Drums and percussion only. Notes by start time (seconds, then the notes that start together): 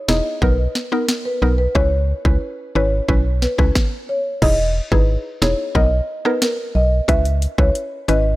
0.09 snare
0.42 kick
0.75 snare
1.09 snare
1.75 kick
2.25 kick
3.09 kick
3.42 snare
3.59 kick, cross-stick
3.75 kick, snare
4.42 kick, crash
4.92 kick
5.42 snare
5.75 kick
6.25 cross-stick
6.42 snare
7.09 kick, closed hi-hat
7.25 closed hi-hat
7.42 closed hi-hat
7.58 kick
7.75 closed hi-hat
8.09 closed hi-hat